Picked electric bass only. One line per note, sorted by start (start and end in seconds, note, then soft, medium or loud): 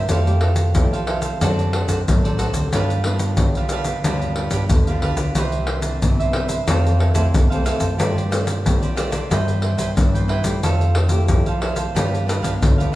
0.09 0.77 F2 medium
0.76 1.32 F3 medium
1.42 1.84 F#2 medium
1.88 2.03 F#2 medium
2.07 2.49 A1 medium
2.53 2.69 D2 medium
2.73 3.39 G2 medium
3.39 3.95 G3 medium
4.05 4.47 D2 medium
4.51 4.67 G2 medium
4.71 5.00 E2 medium
5.02 5.32 D2 medium
5.36 6.04 C2 medium
6.02 6.58 C3 medium
6.68 7.10 F2 medium
7.14 7.30 F2 medium
7.34 7.76 C2 medium
7.81 7.96 F#2 medium
8.00 8.66 G2 medium
8.66 9.22 G3 medium
9.32 9.74 G2 medium
9.78 9.94 G2 medium
9.98 10.40 G2 medium
10.45 10.60 G2 medium
10.63 11.32 F2 medium
11.30 11.86 F3 medium
11.95 12.38 G2 medium
12.43 12.58 G2 medium
12.62 12.95 D2 medium